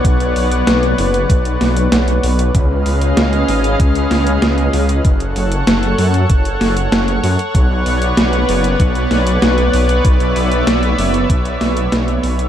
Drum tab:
HH |xxoxxxoxxxoxxxox|x-oxxxoxxxoxxxox|xxoxxxoxxxoxxxox|x-oxxxoxxxoxxxox|
SD |----o-----o-o---|----o-----o-o---|----o-----o-o---|----o-----o-o---|
BD |o-------o-------|o-------o-------|o-------o-------|o-------o-------|

HH |xxoxxxoxxxoxxxox|
SD |----o-----o-o---|
BD |o-------o-------|